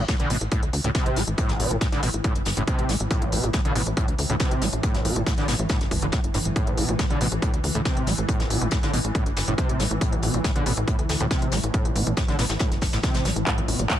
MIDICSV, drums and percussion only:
0, 0, Header, 1, 2, 480
1, 0, Start_track
1, 0, Key_signature, 0, "minor"
1, 0, Tempo, 431655
1, 1535, Time_signature, 4, 2, 24, 8
1, 15564, End_track
2, 0, Start_track
2, 0, Title_t, "Drums"
2, 94, Note_on_c, 9, 42, 78
2, 95, Note_on_c, 9, 36, 114
2, 95, Note_on_c, 9, 38, 127
2, 97, Note_off_c, 9, 42, 0
2, 97, Note_on_c, 9, 42, 96
2, 206, Note_off_c, 9, 36, 0
2, 206, Note_off_c, 9, 38, 0
2, 208, Note_off_c, 9, 42, 0
2, 217, Note_on_c, 9, 42, 54
2, 328, Note_off_c, 9, 42, 0
2, 334, Note_on_c, 9, 46, 107
2, 336, Note_on_c, 9, 42, 75
2, 445, Note_off_c, 9, 46, 0
2, 447, Note_off_c, 9, 42, 0
2, 458, Note_on_c, 9, 42, 56
2, 569, Note_off_c, 9, 42, 0
2, 573, Note_on_c, 9, 42, 79
2, 575, Note_on_c, 9, 36, 123
2, 579, Note_off_c, 9, 42, 0
2, 579, Note_on_c, 9, 42, 85
2, 686, Note_off_c, 9, 36, 0
2, 691, Note_off_c, 9, 42, 0
2, 696, Note_on_c, 9, 42, 55
2, 808, Note_off_c, 9, 42, 0
2, 814, Note_on_c, 9, 46, 96
2, 820, Note_on_c, 9, 42, 62
2, 925, Note_off_c, 9, 46, 0
2, 931, Note_off_c, 9, 42, 0
2, 938, Note_on_c, 9, 42, 56
2, 940, Note_off_c, 9, 42, 0
2, 940, Note_on_c, 9, 42, 42
2, 1051, Note_off_c, 9, 42, 0
2, 1053, Note_on_c, 9, 38, 126
2, 1054, Note_on_c, 9, 42, 80
2, 1055, Note_on_c, 9, 36, 118
2, 1056, Note_off_c, 9, 42, 0
2, 1056, Note_on_c, 9, 42, 79
2, 1164, Note_off_c, 9, 38, 0
2, 1166, Note_off_c, 9, 36, 0
2, 1168, Note_off_c, 9, 42, 0
2, 1179, Note_on_c, 9, 42, 54
2, 1290, Note_off_c, 9, 42, 0
2, 1295, Note_on_c, 9, 46, 100
2, 1298, Note_on_c, 9, 42, 64
2, 1299, Note_on_c, 9, 38, 45
2, 1406, Note_off_c, 9, 46, 0
2, 1409, Note_off_c, 9, 42, 0
2, 1411, Note_off_c, 9, 38, 0
2, 1419, Note_on_c, 9, 42, 53
2, 1530, Note_off_c, 9, 42, 0
2, 1531, Note_on_c, 9, 42, 94
2, 1534, Note_on_c, 9, 36, 120
2, 1535, Note_off_c, 9, 42, 0
2, 1535, Note_on_c, 9, 42, 84
2, 1646, Note_off_c, 9, 36, 0
2, 1646, Note_off_c, 9, 42, 0
2, 1653, Note_on_c, 9, 38, 46
2, 1660, Note_on_c, 9, 42, 55
2, 1764, Note_off_c, 9, 38, 0
2, 1771, Note_off_c, 9, 42, 0
2, 1774, Note_on_c, 9, 42, 64
2, 1776, Note_on_c, 9, 46, 108
2, 1885, Note_off_c, 9, 42, 0
2, 1887, Note_off_c, 9, 46, 0
2, 1900, Note_on_c, 9, 42, 53
2, 2011, Note_off_c, 9, 42, 0
2, 2012, Note_on_c, 9, 38, 114
2, 2015, Note_on_c, 9, 36, 125
2, 2016, Note_on_c, 9, 42, 79
2, 2017, Note_off_c, 9, 42, 0
2, 2017, Note_on_c, 9, 42, 96
2, 2123, Note_off_c, 9, 38, 0
2, 2126, Note_off_c, 9, 36, 0
2, 2128, Note_off_c, 9, 42, 0
2, 2137, Note_on_c, 9, 38, 42
2, 2139, Note_on_c, 9, 42, 52
2, 2248, Note_off_c, 9, 38, 0
2, 2250, Note_off_c, 9, 42, 0
2, 2255, Note_on_c, 9, 42, 65
2, 2255, Note_on_c, 9, 46, 113
2, 2366, Note_off_c, 9, 42, 0
2, 2366, Note_off_c, 9, 46, 0
2, 2378, Note_on_c, 9, 42, 54
2, 2489, Note_off_c, 9, 42, 0
2, 2494, Note_on_c, 9, 36, 122
2, 2494, Note_on_c, 9, 42, 64
2, 2605, Note_off_c, 9, 42, 0
2, 2606, Note_off_c, 9, 36, 0
2, 2612, Note_on_c, 9, 42, 37
2, 2618, Note_off_c, 9, 42, 0
2, 2618, Note_on_c, 9, 42, 54
2, 2727, Note_off_c, 9, 42, 0
2, 2727, Note_on_c, 9, 42, 72
2, 2734, Note_on_c, 9, 46, 103
2, 2735, Note_on_c, 9, 38, 97
2, 2838, Note_off_c, 9, 42, 0
2, 2845, Note_off_c, 9, 46, 0
2, 2846, Note_off_c, 9, 38, 0
2, 2858, Note_on_c, 9, 42, 59
2, 2969, Note_off_c, 9, 42, 0
2, 2974, Note_on_c, 9, 36, 125
2, 2974, Note_on_c, 9, 42, 83
2, 2977, Note_off_c, 9, 42, 0
2, 2977, Note_on_c, 9, 42, 65
2, 3086, Note_off_c, 9, 36, 0
2, 3088, Note_off_c, 9, 42, 0
2, 3099, Note_on_c, 9, 42, 55
2, 3210, Note_off_c, 9, 42, 0
2, 3213, Note_on_c, 9, 38, 57
2, 3214, Note_on_c, 9, 46, 103
2, 3220, Note_on_c, 9, 42, 72
2, 3324, Note_off_c, 9, 38, 0
2, 3325, Note_off_c, 9, 46, 0
2, 3331, Note_off_c, 9, 42, 0
2, 3338, Note_on_c, 9, 42, 56
2, 3450, Note_off_c, 9, 42, 0
2, 3454, Note_on_c, 9, 42, 76
2, 3455, Note_on_c, 9, 36, 122
2, 3460, Note_off_c, 9, 42, 0
2, 3460, Note_on_c, 9, 42, 87
2, 3566, Note_off_c, 9, 36, 0
2, 3571, Note_off_c, 9, 42, 0
2, 3578, Note_on_c, 9, 42, 53
2, 3690, Note_off_c, 9, 42, 0
2, 3695, Note_on_c, 9, 46, 112
2, 3700, Note_on_c, 9, 42, 71
2, 3806, Note_off_c, 9, 46, 0
2, 3811, Note_off_c, 9, 42, 0
2, 3820, Note_on_c, 9, 42, 56
2, 3821, Note_off_c, 9, 42, 0
2, 3821, Note_on_c, 9, 42, 39
2, 3928, Note_on_c, 9, 38, 106
2, 3930, Note_off_c, 9, 42, 0
2, 3930, Note_on_c, 9, 42, 97
2, 3934, Note_on_c, 9, 36, 127
2, 3935, Note_off_c, 9, 42, 0
2, 3935, Note_on_c, 9, 42, 79
2, 4039, Note_off_c, 9, 38, 0
2, 4046, Note_off_c, 9, 36, 0
2, 4046, Note_off_c, 9, 42, 0
2, 4059, Note_on_c, 9, 42, 54
2, 4171, Note_off_c, 9, 42, 0
2, 4175, Note_on_c, 9, 46, 110
2, 4180, Note_on_c, 9, 42, 73
2, 4287, Note_off_c, 9, 46, 0
2, 4291, Note_off_c, 9, 42, 0
2, 4299, Note_on_c, 9, 42, 52
2, 4410, Note_off_c, 9, 42, 0
2, 4414, Note_on_c, 9, 42, 82
2, 4415, Note_on_c, 9, 36, 127
2, 4422, Note_off_c, 9, 42, 0
2, 4422, Note_on_c, 9, 42, 92
2, 4526, Note_off_c, 9, 36, 0
2, 4533, Note_off_c, 9, 42, 0
2, 4538, Note_on_c, 9, 42, 53
2, 4649, Note_off_c, 9, 42, 0
2, 4653, Note_on_c, 9, 46, 106
2, 4660, Note_on_c, 9, 42, 70
2, 4765, Note_off_c, 9, 46, 0
2, 4771, Note_off_c, 9, 42, 0
2, 4778, Note_on_c, 9, 42, 55
2, 4785, Note_off_c, 9, 42, 0
2, 4785, Note_on_c, 9, 42, 42
2, 4889, Note_on_c, 9, 38, 120
2, 4890, Note_off_c, 9, 42, 0
2, 4890, Note_on_c, 9, 42, 92
2, 4894, Note_off_c, 9, 42, 0
2, 4894, Note_on_c, 9, 36, 127
2, 4894, Note_on_c, 9, 42, 82
2, 5000, Note_off_c, 9, 38, 0
2, 5005, Note_off_c, 9, 42, 0
2, 5006, Note_off_c, 9, 36, 0
2, 5018, Note_on_c, 9, 42, 55
2, 5129, Note_off_c, 9, 42, 0
2, 5132, Note_on_c, 9, 38, 50
2, 5134, Note_on_c, 9, 46, 107
2, 5137, Note_on_c, 9, 42, 61
2, 5243, Note_off_c, 9, 38, 0
2, 5245, Note_off_c, 9, 46, 0
2, 5248, Note_off_c, 9, 42, 0
2, 5258, Note_on_c, 9, 42, 53
2, 5369, Note_off_c, 9, 42, 0
2, 5375, Note_on_c, 9, 36, 120
2, 5375, Note_on_c, 9, 42, 94
2, 5486, Note_off_c, 9, 36, 0
2, 5486, Note_off_c, 9, 42, 0
2, 5498, Note_on_c, 9, 38, 44
2, 5498, Note_on_c, 9, 42, 51
2, 5609, Note_off_c, 9, 38, 0
2, 5609, Note_off_c, 9, 42, 0
2, 5613, Note_on_c, 9, 42, 68
2, 5615, Note_on_c, 9, 46, 104
2, 5724, Note_off_c, 9, 42, 0
2, 5726, Note_off_c, 9, 46, 0
2, 5738, Note_on_c, 9, 42, 52
2, 5850, Note_off_c, 9, 42, 0
2, 5854, Note_on_c, 9, 36, 127
2, 5855, Note_on_c, 9, 42, 73
2, 5856, Note_on_c, 9, 38, 115
2, 5862, Note_off_c, 9, 42, 0
2, 5862, Note_on_c, 9, 42, 96
2, 5966, Note_off_c, 9, 36, 0
2, 5968, Note_off_c, 9, 38, 0
2, 5973, Note_off_c, 9, 42, 0
2, 5979, Note_on_c, 9, 42, 49
2, 5986, Note_on_c, 9, 38, 44
2, 6090, Note_off_c, 9, 42, 0
2, 6095, Note_on_c, 9, 46, 110
2, 6097, Note_off_c, 9, 38, 0
2, 6099, Note_on_c, 9, 38, 105
2, 6106, Note_on_c, 9, 42, 75
2, 6206, Note_off_c, 9, 46, 0
2, 6210, Note_off_c, 9, 38, 0
2, 6217, Note_off_c, 9, 42, 0
2, 6219, Note_on_c, 9, 42, 51
2, 6326, Note_off_c, 9, 42, 0
2, 6326, Note_on_c, 9, 42, 70
2, 6330, Note_on_c, 9, 38, 108
2, 6334, Note_off_c, 9, 42, 0
2, 6334, Note_on_c, 9, 36, 127
2, 6334, Note_on_c, 9, 42, 78
2, 6441, Note_off_c, 9, 38, 0
2, 6445, Note_off_c, 9, 36, 0
2, 6445, Note_off_c, 9, 42, 0
2, 6456, Note_on_c, 9, 38, 40
2, 6459, Note_on_c, 9, 42, 52
2, 6568, Note_off_c, 9, 38, 0
2, 6570, Note_off_c, 9, 42, 0
2, 6574, Note_on_c, 9, 36, 65
2, 6574, Note_on_c, 9, 46, 103
2, 6575, Note_on_c, 9, 42, 62
2, 6685, Note_off_c, 9, 36, 0
2, 6685, Note_off_c, 9, 46, 0
2, 6686, Note_off_c, 9, 42, 0
2, 6697, Note_on_c, 9, 42, 53
2, 6806, Note_on_c, 9, 38, 118
2, 6808, Note_off_c, 9, 42, 0
2, 6813, Note_on_c, 9, 42, 79
2, 6814, Note_on_c, 9, 36, 127
2, 6816, Note_off_c, 9, 42, 0
2, 6816, Note_on_c, 9, 42, 85
2, 6917, Note_off_c, 9, 38, 0
2, 6926, Note_off_c, 9, 36, 0
2, 6927, Note_off_c, 9, 42, 0
2, 6937, Note_on_c, 9, 42, 55
2, 7049, Note_off_c, 9, 42, 0
2, 7049, Note_on_c, 9, 38, 54
2, 7053, Note_on_c, 9, 46, 104
2, 7056, Note_on_c, 9, 42, 66
2, 7160, Note_off_c, 9, 38, 0
2, 7164, Note_off_c, 9, 46, 0
2, 7167, Note_off_c, 9, 42, 0
2, 7176, Note_on_c, 9, 42, 51
2, 7288, Note_off_c, 9, 42, 0
2, 7294, Note_on_c, 9, 36, 120
2, 7294, Note_on_c, 9, 42, 73
2, 7296, Note_off_c, 9, 42, 0
2, 7296, Note_on_c, 9, 42, 98
2, 7406, Note_off_c, 9, 36, 0
2, 7407, Note_off_c, 9, 42, 0
2, 7417, Note_on_c, 9, 42, 49
2, 7528, Note_off_c, 9, 42, 0
2, 7534, Note_on_c, 9, 42, 60
2, 7534, Note_on_c, 9, 46, 108
2, 7645, Note_off_c, 9, 46, 0
2, 7646, Note_off_c, 9, 42, 0
2, 7656, Note_on_c, 9, 42, 40
2, 7658, Note_off_c, 9, 42, 0
2, 7658, Note_on_c, 9, 42, 49
2, 7769, Note_off_c, 9, 42, 0
2, 7772, Note_on_c, 9, 42, 90
2, 7774, Note_off_c, 9, 42, 0
2, 7774, Note_on_c, 9, 36, 114
2, 7774, Note_on_c, 9, 38, 112
2, 7774, Note_on_c, 9, 42, 75
2, 7885, Note_off_c, 9, 38, 0
2, 7885, Note_off_c, 9, 42, 0
2, 7886, Note_off_c, 9, 36, 0
2, 7898, Note_on_c, 9, 42, 49
2, 8009, Note_off_c, 9, 42, 0
2, 8015, Note_on_c, 9, 46, 106
2, 8023, Note_on_c, 9, 42, 64
2, 8126, Note_off_c, 9, 46, 0
2, 8134, Note_off_c, 9, 42, 0
2, 8139, Note_on_c, 9, 42, 50
2, 8250, Note_off_c, 9, 42, 0
2, 8254, Note_on_c, 9, 36, 126
2, 8256, Note_on_c, 9, 42, 85
2, 8365, Note_off_c, 9, 36, 0
2, 8368, Note_off_c, 9, 42, 0
2, 8380, Note_on_c, 9, 42, 51
2, 8490, Note_off_c, 9, 42, 0
2, 8490, Note_on_c, 9, 42, 72
2, 8495, Note_on_c, 9, 46, 101
2, 8601, Note_off_c, 9, 42, 0
2, 8606, Note_off_c, 9, 46, 0
2, 8614, Note_on_c, 9, 42, 43
2, 8620, Note_off_c, 9, 42, 0
2, 8620, Note_on_c, 9, 42, 51
2, 8731, Note_off_c, 9, 42, 0
2, 8731, Note_on_c, 9, 38, 109
2, 8734, Note_on_c, 9, 36, 125
2, 8736, Note_on_c, 9, 42, 77
2, 8739, Note_off_c, 9, 42, 0
2, 8739, Note_on_c, 9, 42, 83
2, 8842, Note_off_c, 9, 38, 0
2, 8845, Note_off_c, 9, 36, 0
2, 8850, Note_off_c, 9, 42, 0
2, 8860, Note_on_c, 9, 42, 51
2, 8969, Note_off_c, 9, 42, 0
2, 8969, Note_on_c, 9, 42, 69
2, 8974, Note_on_c, 9, 38, 45
2, 8976, Note_on_c, 9, 46, 104
2, 9080, Note_off_c, 9, 42, 0
2, 9085, Note_off_c, 9, 38, 0
2, 9087, Note_off_c, 9, 46, 0
2, 9099, Note_on_c, 9, 42, 49
2, 9210, Note_off_c, 9, 42, 0
2, 9214, Note_on_c, 9, 36, 116
2, 9215, Note_on_c, 9, 42, 73
2, 9219, Note_off_c, 9, 42, 0
2, 9219, Note_on_c, 9, 42, 93
2, 9325, Note_off_c, 9, 36, 0
2, 9330, Note_off_c, 9, 42, 0
2, 9340, Note_on_c, 9, 38, 48
2, 9340, Note_on_c, 9, 42, 49
2, 9451, Note_off_c, 9, 38, 0
2, 9451, Note_off_c, 9, 42, 0
2, 9456, Note_on_c, 9, 46, 105
2, 9461, Note_on_c, 9, 42, 69
2, 9567, Note_off_c, 9, 46, 0
2, 9573, Note_off_c, 9, 42, 0
2, 9579, Note_on_c, 9, 42, 51
2, 9685, Note_off_c, 9, 42, 0
2, 9685, Note_on_c, 9, 42, 92
2, 9694, Note_on_c, 9, 36, 115
2, 9695, Note_off_c, 9, 42, 0
2, 9695, Note_on_c, 9, 42, 73
2, 9696, Note_on_c, 9, 38, 113
2, 9805, Note_off_c, 9, 36, 0
2, 9807, Note_off_c, 9, 38, 0
2, 9807, Note_off_c, 9, 42, 0
2, 9816, Note_on_c, 9, 38, 52
2, 9820, Note_on_c, 9, 42, 49
2, 9927, Note_off_c, 9, 38, 0
2, 9931, Note_off_c, 9, 42, 0
2, 9935, Note_on_c, 9, 46, 105
2, 9942, Note_on_c, 9, 42, 68
2, 10047, Note_off_c, 9, 46, 0
2, 10053, Note_off_c, 9, 42, 0
2, 10059, Note_on_c, 9, 42, 50
2, 10171, Note_off_c, 9, 42, 0
2, 10174, Note_on_c, 9, 36, 122
2, 10175, Note_on_c, 9, 42, 74
2, 10179, Note_off_c, 9, 42, 0
2, 10179, Note_on_c, 9, 42, 56
2, 10285, Note_off_c, 9, 36, 0
2, 10291, Note_off_c, 9, 42, 0
2, 10299, Note_on_c, 9, 42, 51
2, 10301, Note_off_c, 9, 42, 0
2, 10301, Note_on_c, 9, 42, 38
2, 10412, Note_off_c, 9, 42, 0
2, 10415, Note_on_c, 9, 46, 101
2, 10417, Note_on_c, 9, 38, 101
2, 10419, Note_on_c, 9, 42, 70
2, 10527, Note_off_c, 9, 46, 0
2, 10528, Note_off_c, 9, 38, 0
2, 10530, Note_off_c, 9, 42, 0
2, 10540, Note_on_c, 9, 42, 52
2, 10651, Note_off_c, 9, 42, 0
2, 10654, Note_on_c, 9, 36, 116
2, 10655, Note_on_c, 9, 42, 77
2, 10659, Note_off_c, 9, 42, 0
2, 10659, Note_on_c, 9, 42, 66
2, 10765, Note_off_c, 9, 36, 0
2, 10770, Note_off_c, 9, 42, 0
2, 10779, Note_on_c, 9, 42, 53
2, 10890, Note_off_c, 9, 42, 0
2, 10891, Note_on_c, 9, 42, 68
2, 10895, Note_on_c, 9, 46, 97
2, 10897, Note_on_c, 9, 38, 51
2, 11002, Note_off_c, 9, 42, 0
2, 11007, Note_off_c, 9, 46, 0
2, 11008, Note_off_c, 9, 38, 0
2, 11019, Note_on_c, 9, 42, 50
2, 11130, Note_off_c, 9, 42, 0
2, 11133, Note_on_c, 9, 36, 110
2, 11134, Note_on_c, 9, 42, 76
2, 11245, Note_off_c, 9, 36, 0
2, 11245, Note_off_c, 9, 42, 0
2, 11259, Note_on_c, 9, 42, 51
2, 11368, Note_off_c, 9, 42, 0
2, 11368, Note_on_c, 9, 42, 59
2, 11374, Note_on_c, 9, 46, 102
2, 11479, Note_off_c, 9, 42, 0
2, 11485, Note_off_c, 9, 46, 0
2, 11497, Note_on_c, 9, 42, 50
2, 11506, Note_off_c, 9, 42, 0
2, 11506, Note_on_c, 9, 42, 39
2, 11613, Note_on_c, 9, 36, 110
2, 11615, Note_off_c, 9, 42, 0
2, 11615, Note_on_c, 9, 42, 77
2, 11617, Note_on_c, 9, 38, 109
2, 11619, Note_off_c, 9, 42, 0
2, 11619, Note_on_c, 9, 42, 90
2, 11725, Note_off_c, 9, 36, 0
2, 11728, Note_off_c, 9, 38, 0
2, 11730, Note_off_c, 9, 42, 0
2, 11738, Note_on_c, 9, 42, 50
2, 11849, Note_off_c, 9, 42, 0
2, 11854, Note_on_c, 9, 46, 97
2, 11857, Note_on_c, 9, 42, 69
2, 11966, Note_off_c, 9, 46, 0
2, 11968, Note_off_c, 9, 42, 0
2, 11978, Note_on_c, 9, 42, 48
2, 12089, Note_off_c, 9, 42, 0
2, 12094, Note_on_c, 9, 36, 120
2, 12094, Note_on_c, 9, 42, 94
2, 12095, Note_off_c, 9, 42, 0
2, 12095, Note_on_c, 9, 42, 77
2, 12205, Note_off_c, 9, 36, 0
2, 12206, Note_off_c, 9, 42, 0
2, 12219, Note_on_c, 9, 42, 50
2, 12330, Note_off_c, 9, 42, 0
2, 12334, Note_on_c, 9, 46, 99
2, 12335, Note_on_c, 9, 42, 85
2, 12338, Note_on_c, 9, 38, 94
2, 12446, Note_off_c, 9, 42, 0
2, 12446, Note_off_c, 9, 46, 0
2, 12449, Note_off_c, 9, 38, 0
2, 12450, Note_on_c, 9, 42, 42
2, 12459, Note_off_c, 9, 42, 0
2, 12459, Note_on_c, 9, 42, 52
2, 12570, Note_off_c, 9, 42, 0
2, 12574, Note_on_c, 9, 36, 120
2, 12574, Note_on_c, 9, 38, 107
2, 12574, Note_on_c, 9, 42, 81
2, 12577, Note_off_c, 9, 42, 0
2, 12577, Note_on_c, 9, 42, 88
2, 12685, Note_off_c, 9, 36, 0
2, 12685, Note_off_c, 9, 38, 0
2, 12688, Note_off_c, 9, 42, 0
2, 12698, Note_on_c, 9, 42, 54
2, 12805, Note_off_c, 9, 42, 0
2, 12805, Note_on_c, 9, 42, 81
2, 12814, Note_on_c, 9, 38, 95
2, 12815, Note_on_c, 9, 46, 95
2, 12917, Note_off_c, 9, 42, 0
2, 12925, Note_off_c, 9, 38, 0
2, 12927, Note_off_c, 9, 46, 0
2, 12939, Note_on_c, 9, 42, 51
2, 13050, Note_off_c, 9, 42, 0
2, 13054, Note_on_c, 9, 36, 121
2, 13055, Note_on_c, 9, 42, 66
2, 13165, Note_off_c, 9, 36, 0
2, 13166, Note_off_c, 9, 42, 0
2, 13178, Note_on_c, 9, 42, 53
2, 13289, Note_off_c, 9, 42, 0
2, 13295, Note_on_c, 9, 42, 69
2, 13295, Note_on_c, 9, 46, 98
2, 13406, Note_off_c, 9, 42, 0
2, 13406, Note_off_c, 9, 46, 0
2, 13419, Note_on_c, 9, 42, 53
2, 13530, Note_off_c, 9, 42, 0
2, 13530, Note_on_c, 9, 42, 89
2, 13534, Note_on_c, 9, 36, 119
2, 13534, Note_on_c, 9, 38, 120
2, 13535, Note_off_c, 9, 42, 0
2, 13535, Note_on_c, 9, 42, 76
2, 13645, Note_off_c, 9, 36, 0
2, 13646, Note_off_c, 9, 38, 0
2, 13647, Note_off_c, 9, 42, 0
2, 13659, Note_on_c, 9, 42, 53
2, 13666, Note_on_c, 9, 38, 47
2, 13770, Note_off_c, 9, 42, 0
2, 13772, Note_on_c, 9, 42, 71
2, 13776, Note_on_c, 9, 46, 105
2, 13778, Note_off_c, 9, 38, 0
2, 13778, Note_on_c, 9, 38, 100
2, 13884, Note_off_c, 9, 42, 0
2, 13887, Note_off_c, 9, 46, 0
2, 13889, Note_off_c, 9, 38, 0
2, 13891, Note_on_c, 9, 38, 95
2, 13892, Note_on_c, 9, 42, 77
2, 13900, Note_off_c, 9, 42, 0
2, 13900, Note_on_c, 9, 42, 52
2, 14002, Note_off_c, 9, 38, 0
2, 14003, Note_on_c, 9, 38, 96
2, 14011, Note_off_c, 9, 42, 0
2, 14012, Note_on_c, 9, 42, 76
2, 14015, Note_on_c, 9, 36, 125
2, 14016, Note_off_c, 9, 42, 0
2, 14016, Note_on_c, 9, 42, 82
2, 14115, Note_off_c, 9, 38, 0
2, 14126, Note_off_c, 9, 36, 0
2, 14127, Note_off_c, 9, 42, 0
2, 14141, Note_on_c, 9, 42, 51
2, 14143, Note_on_c, 9, 38, 40
2, 14248, Note_off_c, 9, 42, 0
2, 14248, Note_on_c, 9, 42, 68
2, 14254, Note_on_c, 9, 36, 56
2, 14255, Note_off_c, 9, 38, 0
2, 14256, Note_on_c, 9, 46, 96
2, 14259, Note_on_c, 9, 38, 97
2, 14359, Note_off_c, 9, 42, 0
2, 14366, Note_off_c, 9, 36, 0
2, 14367, Note_off_c, 9, 46, 0
2, 14370, Note_off_c, 9, 38, 0
2, 14373, Note_on_c, 9, 42, 79
2, 14379, Note_on_c, 9, 38, 105
2, 14380, Note_off_c, 9, 42, 0
2, 14380, Note_on_c, 9, 42, 55
2, 14489, Note_off_c, 9, 42, 0
2, 14489, Note_on_c, 9, 42, 79
2, 14490, Note_off_c, 9, 38, 0
2, 14494, Note_on_c, 9, 36, 117
2, 14495, Note_off_c, 9, 42, 0
2, 14495, Note_on_c, 9, 38, 102
2, 14495, Note_on_c, 9, 42, 83
2, 14605, Note_off_c, 9, 36, 0
2, 14607, Note_off_c, 9, 38, 0
2, 14607, Note_off_c, 9, 42, 0
2, 14612, Note_on_c, 9, 42, 82
2, 14618, Note_on_c, 9, 38, 108
2, 14619, Note_off_c, 9, 42, 0
2, 14619, Note_on_c, 9, 42, 55
2, 14729, Note_off_c, 9, 38, 0
2, 14730, Note_off_c, 9, 42, 0
2, 14735, Note_on_c, 9, 46, 98
2, 14738, Note_on_c, 9, 42, 70
2, 14741, Note_on_c, 9, 38, 57
2, 14846, Note_off_c, 9, 46, 0
2, 14849, Note_off_c, 9, 42, 0
2, 14853, Note_off_c, 9, 38, 0
2, 14860, Note_on_c, 9, 42, 53
2, 14971, Note_off_c, 9, 42, 0
2, 14974, Note_on_c, 9, 36, 119
2, 14976, Note_on_c, 9, 39, 124
2, 14976, Note_on_c, 9, 42, 82
2, 14984, Note_off_c, 9, 42, 0
2, 14984, Note_on_c, 9, 42, 81
2, 15085, Note_off_c, 9, 36, 0
2, 15087, Note_off_c, 9, 39, 0
2, 15095, Note_off_c, 9, 42, 0
2, 15100, Note_on_c, 9, 42, 55
2, 15211, Note_off_c, 9, 42, 0
2, 15213, Note_on_c, 9, 42, 60
2, 15216, Note_on_c, 9, 46, 112
2, 15324, Note_off_c, 9, 42, 0
2, 15327, Note_off_c, 9, 46, 0
2, 15331, Note_on_c, 9, 42, 44
2, 15339, Note_off_c, 9, 42, 0
2, 15339, Note_on_c, 9, 42, 56
2, 15450, Note_off_c, 9, 42, 0
2, 15452, Note_on_c, 9, 42, 82
2, 15453, Note_on_c, 9, 38, 119
2, 15454, Note_on_c, 9, 36, 123
2, 15455, Note_off_c, 9, 42, 0
2, 15455, Note_on_c, 9, 39, 118
2, 15455, Note_on_c, 9, 42, 78
2, 15564, Note_off_c, 9, 36, 0
2, 15564, Note_off_c, 9, 38, 0
2, 15564, Note_off_c, 9, 39, 0
2, 15564, Note_off_c, 9, 42, 0
2, 15564, End_track
0, 0, End_of_file